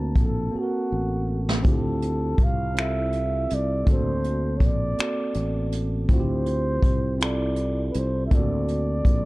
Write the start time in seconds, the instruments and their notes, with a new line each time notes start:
Already playing: fretless electric bass D2, tine electric piano A#3 C4 F#4 A5
0.16 fretless electric bass A#1, kick, closed hi-hat
0.22 flugelhorn A4
0.51 tine electric piano A#3 C4 F#4, muted fretless electric bass stroke
0.56 flugelhorn F#4, tine electric piano A4
0.63 tine electric piano A#4
0.92 fretless electric bass A1
1.49 snare
1.63 fretless electric bass D2, tine electric piano C4 E4 F4, kick, closed hi-hat
1.68 tine electric piano G4, flugelhorn A4
2.02 closed hi-hat
2.38 fretless electric bass C2, kick, closed hi-hat
2.44 flugelhorn F5
2.74 tine electric piano C4 E4 F4, closed hi-hat
2.79 tine electric piano A4, flugelhorn E5, finger snap
3.12 closed hi-hat
3.50 fretless electric bass C2, closed hi-hat
3.54 flugelhorn D5
3.85 fretless electric bass D2, tine electric piano A#3 C4 F#4, kick, closed hi-hat
3.90 tine electric piano A4, flugelhorn C5
4.24 closed hi-hat
4.57 fretless electric bass A#1, flugelhorn C#5, kick
4.61 closed hi-hat
4.65 flugelhorn D5
4.97 tine electric piano A#3 C4 F#4, finger snap, closed hi-hat
5.02 tine electric piano A4
5.34 fretless electric bass A1, closed hi-hat
5.72 closed hi-hat
6.09 fretless electric bass D2, tine electric piano C4 E4 F4, flugelhorn C5, kick, closed hi-hat
6.14 tine electric piano F#4
6.20 tine electric piano G4
6.46 closed hi-hat
6.82 fretless electric bass C2, kick, closed hi-hat
7.18 tine electric piano C4 E4 F4, closed hi-hat
7.23 tine electric piano A4, flugelhorn D5, finger snap
7.56 closed hi-hat
7.90 flugelhorn B4, closed hi-hat
7.95 fretless electric bass C2, flugelhorn C5
8.27 tine electric piano A#3, flugelhorn E5
8.31 fretless electric bass D2, tine electric piano C4 F4 A4, flugelhorn D5, kick, closed hi-hat
8.40 tine electric piano F#4
8.68 closed hi-hat
9.05 fretless electric bass A#1, kick, closed hi-hat